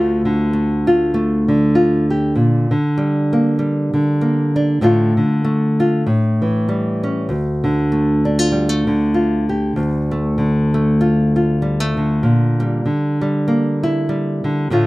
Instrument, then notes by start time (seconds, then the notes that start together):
nylon-string guitar
Already playing: D2 D3 A3 F4
0.25 D3
0.53 A3
0.87 F4
1.14 A3
1.48 D3
1.75 F4
2.10 G4
2.36 A#2
2.71 D3
2.98 G3
3.33 A#3
3.59 G3
3.94 D3
4.21 A#3
4.56 D4
4.81 A2 D3 A3 F4
5.17 D3
5.44 A3
5.80 F4
6.06 A2
6.42 E3
6.69 G3
7.03 C#4
7.29 D2
7.64 D3
7.92 A3
8.25 D4
8.39 F4
8.52 G3
8.69 A3
8.87 D3
9.14 F4
9.49 G4
9.76 D2
10.11 A3
10.38 D3
10.74 A3
11.01 F4
11.36 F4
11.62 G3
11.80 A3
11.97 D3
12.23 A#2
12.60 G3
12.86 D3
13.21 G3
13.48 A#3
13.83 E4
14.09 G3
14.44 D3
14.70 A2 D3 A3 F4